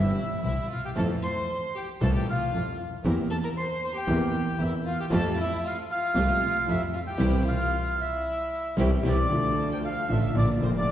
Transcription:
Already playing: double bass G1, grand piano G1 G2 E3 G3 C4 G4, string section C4 E4 G4, violin E4, bandoneon E5
0.42 double bass C2, grand piano C2 C3, string section C4 E4 G4, violin E4, bandoneon E5
0.69 violin F4, bandoneon F5
0.85 violin G4, bandoneon G5
0.95 double bass F2, grand piano F2 E3 F3 A3 C4 F4, string section E4 F4 A4, violin A4, bandoneon A5
1.22 violin C5, bandoneon C6
1.75 violin G4, bandoneon G5
2.01 grand piano C2 C3 E3 A3 C4 F4, double bass C2, string section E4 F4 A4, violin A4, bandoneon A5
2.15 violin G4, bandoneon G5
2.29 violin F4, bandoneon F5
2.53 double bass F2, grand piano F2 F3, string section E4 F4 A4
3.04 double bass E2, grand piano E2 E3 A#3 C4 G4, string section C4 E4 A#4
3.30 violin A4, bandoneon A5
3.44 violin A#4, bandoneon A#5
3.57 violin C5, bandoneon C6
3.82 violin C5, bandoneon C6
3.96 violin G4, bandoneon G5
4.07 grand piano E2 E3 A#3 C4 G4, double bass E2, string section C4 E4 A#4
4.58 double bass E2, grand piano E2 E3, string section C4 E4 A#4, violin E4
4.62 bandoneon E5
4.86 violin F4, bandoneon F5
5.00 violin G4, bandoneon G5
5.10 grand piano F2 F3 A3 C4 G4, double bass F2, string section A3 F4 G4, violin A4
5.14 bandoneon A5
5.38 violin E4, bandoneon E5
5.64 violin F4, bandoneon F5
5.91 violin F4, bandoneon F5
6.14 grand piano C2 C3 F3 A3 C4 G4, double bass C2, string section A3 F4 G4
6.67 grand piano F2 F3, double bass F2, string section A3 F4 G4, violin E4, bandoneon E5
6.94 violin F4, bandoneon F5
7.07 violin G4, bandoneon G5
7.18 double bass C2, grand piano C3 E3 G3, string section C4 E4 G4
7.46 violin F4, bandoneon F5
7.99 violin E4, bandoneon E5
8.77 double bass C2, grand piano C3 E3 G3, string section C4 E4 G4
9.03 double bass C2, grand piano C3 E3 G3, string section C4 E4 G4, violin D5
9.09 bandoneon D5
9.29 grand piano D2 D3 F3 A3 F4, double bass D2, string section D4 F4 A4
9.72 violin G5, bandoneon G5
9.85 bandoneon F5, violin F5
10.09 double bass A1, grand piano A1 A2 D3 F3 A3 F4, string section D4 F4 A4, violin E5, bandoneon E5
10.35 grand piano A#1 A#2 D3 F3 A#3 F4, double bass A#1, string section D4 F4 A#4, violin D5, bandoneon D5
10.58 grand piano F1 F2 D3 F3 A#3, double bass F1
10.62 string section D4 F4 A#4, grand piano F4, violin C5, bandoneon C5
10.77 violin D5, bandoneon D5

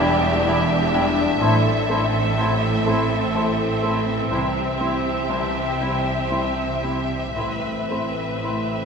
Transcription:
Already playing: grand piano E1 E2, double bass section E1, cello section E2, harp E3 D4 E4 G4 D5 E5, french horn section G3 D4, viola section D4, violin section G4 E5
0.00 grand piano G3 D4 E4, clarinet E4, cor anglais D5, harp G5, flute G5
0.24 harp D5
0.46 grand piano E1 E2, clarinet E4, harp G4, cor anglais D5, flute G5
0.71 harp E4
0.94 grand piano G3 D4 E4, harp D4, clarinet E4, cor anglais D5, flute G5
1.18 harp G3
1.40 grand piano A1 A2, double bass section A1, cello section A2, harp A2, french horn section E3, viola section C4, clarinet E4, violin section A4, cor anglais C5, flute A5
1.66 harp A3
1.90 grand piano A3 C4 E4, harp C4, clarinet E4, cor anglais C5, flute A5
2.14 harp E4
2.37 grand piano A1 A2, french horn section C4, clarinet E4, harp A4, cor anglais C5, flute A5
2.86 grand piano A3 C4 E4, clarinet E4, cor anglais C5, harp E5, flute A5
3.11 harp A4
3.34 grand piano A1 A2, harp E4, clarinet E4, cor anglais C5, flute A5
3.59 harp C4
3.82 grand piano A3 C4 E4, harp A3, clarinet E4, cor anglais C5, flute A5
4.08 harp E3
4.31 grand piano C2 C3, double bass section C2, harp C3, cello section C3, clarinet E4, violin section G4 E5, cor anglais C5, flute C6
4.56 harp C4
4.80 grand piano G3 C4 E4, harp E4, clarinet E4, cor anglais C5, flute C6
5.06 harp G4
5.29 grand piano C2 C3, clarinet E4, cor anglais C5, flute C6
5.55 harp E5
5.79 grand piano G3 C4 E4, clarinet E4, cor anglais C5, harp G5, flute C6
6.30 grand piano C2 C3, clarinet E4, harp G4, cor anglais C5, flute C6
6.57 harp E4
6.83 grand piano G3 C4 E4, harp C4, clarinet E4, cor anglais C5, flute C6
7.10 harp G3
7.35 grand piano A1 A2, double bass section A1, timpani A2, cello section A2, harp A2, french horn section C3 C4, viola section C4, clarinet E4, violin section B4, cor anglais C5, flute B5
7.64 harp A3
7.90 grand piano A3 C4 E4, harp C4, clarinet E4, cor anglais C5, flute B5
8.18 harp E4
8.43 grand piano A1 A2, clarinet E4, harp A4, cor anglais C5, flute B5

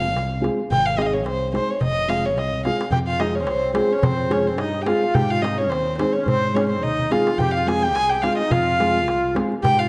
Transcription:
Already playing: fingered electric bass F1, violin F5
0.15 fingered electric bass C2, darbuka tek
0.32 darbuka tek
0.41 nylon-string guitar G#3 C4 F4 G#4, darbuka tek
0.59 darbuka tek
0.71 fingered electric bass G#1, violin G5, darbuka dum
0.86 violin F5, darbuka tek
0.96 nylon-string guitar G#3 C4 D#4 G#4, violin D#5, darbuka tek
1.02 violin F5
1.06 violin D#5
1.13 violin C#5
1.25 fingered electric bass C2, violin C5, darbuka tek
1.42 darbuka tek
1.53 nylon-string guitar G#3 C4 D#4 G#4, violin C5, darbuka tek
1.70 violin C#5, darbuka tek
1.81 fingered electric bass F1, violin D#5, darbuka dum
1.97 darbuka tek
2.08 nylon-string guitar G#3 C4 F4 G#4, violin F5, darbuka tek
2.25 violin C#5
2.36 fingered electric bass C2, violin D#5, darbuka tek
2.53 darbuka dum
2.65 nylon-string guitar G#3 C4 F4 G#4, violin F5, darbuka tek
2.81 darbuka tek
2.90 fingered electric bass F2, accordion G4, violin G5, darbuka dum
3.07 accordion F4, violin F5, darbuka tek
3.19 nylon-string guitar G#3 C4 F4 G#4, accordion D#4, violin D#5, darbuka tek
3.35 accordion C4 C#4, violin C#5
3.39 accordion C#4, violin C5 C#5
3.47 fingered electric bass C2, accordion C4, violin C5, darbuka tek
3.62 darbuka tek
3.73 nylon-string guitar G#3 C4 F4 G#4, accordion C4, violin C5, darbuka tek
3.90 accordion C#4, violin C#5, darbuka tek
4.02 fingered electric bass F2, accordion C4, violin C5, darbuka dum
4.19 darbuka tek
4.29 nylon-string guitar G#3 C4 F4 G#4, accordion C#4, violin C#5, darbuka tek
4.47 accordion C4, violin C5
4.58 fingered electric bass G2, accordion D#4, violin D#5, darbuka tek
4.74 darbuka tek
4.81 accordion G4, violin G5
4.85 nylon-string guitar G#3 C4 F4 G#4, accordion F4, violin F5, darbuka tek
5.02 darbuka tek
5.14 fingered electric bass G#2, accordion G4, violin G5, darbuka dum
5.30 accordion F4, violin F5, darbuka tek
5.41 nylon-string guitar G#3 C4 D#4 G#4, accordion D#4, violin D#5, darbuka tek
5.58 accordion C#4, violin C#5
5.69 fingered electric bass D#2, accordion C4, violin C5, darbuka tek
5.88 darbuka tek
5.98 nylon-string guitar G#3 C4 D#4 G#4, accordion C4, violin C5, darbuka tek
6.12 accordion C#4, violin C#5, darbuka tek
6.26 fingered electric bass G#2, accordion C4, violin C5, darbuka dum
6.44 darbuka tek
6.54 nylon-string guitar G#3 C4 D#4 G#4, accordion C#4, violin C#5, darbuka tek
6.69 accordion C4, violin C5
6.82 fingered electric bass D#2, accordion D#4, violin D#5, darbuka dum
6.99 darbuka dum
7.11 nylon-string guitar G#3 C4 D#4 G#4, accordion F4, violin F5, darbuka tek
7.27 darbuka tek
7.38 fingered electric bass F2, accordion G4, violin G5, darbuka dum
7.54 accordion F4, violin F5, darbuka tek
7.66 nylon-string guitar G#3 C4 F4 G#4, accordion G#4, violin G#5, darbuka tek
7.82 accordion G4, violin G5
7.94 fingered electric bass C2, accordion G#4, violin G#5, darbuka tek
8.09 accordion G4, violin G5, darbuka tek
8.22 nylon-string guitar G#3 C4 F4 G#4, accordion F4, violin F5, darbuka tek
8.37 accordion D#4, violin D#5, darbuka tek
8.50 fingered electric bass F2, accordion F4, violin F5, darbuka dum
8.68 darbuka tek
8.80 nylon-string guitar G#3 C4 F4 G#4, darbuka tek
9.07 fingered electric bass C2, darbuka tek
9.24 darbuka tek
9.35 nylon-string guitar G#3 C4 F4 G#4, darbuka tek
9.52 darbuka tek
9.62 fingered electric bass G#2, accordion G4, violin G5, darbuka dum
9.78 accordion F4, violin F5, darbuka tek

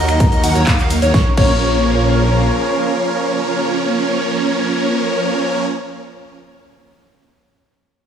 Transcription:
Already playing: detuned saw bass D#2, analog synth pad D#3 A#3 F#4 A#4, supersaw synth F#3 A#3 D#4 A#4 D#5, digital synth lead D#5, vibraphone A#5
0.08 finger snap, closed hi-hat, cabasa
0.20 kick, closed hi-hat, ride, cabasa
0.32 detuned saw bass D#2, supersaw synth F#3 A#3 D#4 A#4 D#5, digital synth lead D#5, closed hi-hat, cabasa
0.44 detuned saw bass D#2, supersaw synth F#3 A#3 D#4 A#4 F#5, digital synth lead F#5, open hi-hat, ride, cabasa
0.55 detuned saw bass D#2, supersaw synth F#3 A#3 D#4 A#4 C#5, digital synth lead C#5, closed hi-hat, cabasa
0.67 detuned saw bass D#2, supersaw synth F#3 A#3 D#4 A#4 F5, digital synth lead F5, kick, clap, closed hi-hat, ride, cabasa
0.79 clap, closed hi-hat, cabasa
0.90 open hi-hat, ride, cabasa
1.02 detuned saw bass D#2, supersaw synth F#3 A#3 D#4 A#4 C#5, digital synth lead C#5, closed hi-hat, cabasa
1.14 detuned saw bass A#1, analog synth pad C#3 A#3 F4 A#4, supersaw synth F3 A#3 C#4 A#4 C#5, digital synth lead C#5, vibraphone C#6, kick, snare
1.37 detuned saw bass A#1, supersaw synth F3 A#3 C#4 A#4 C#5, digital synth lead C#5, vibraphone C#6, kick, crash

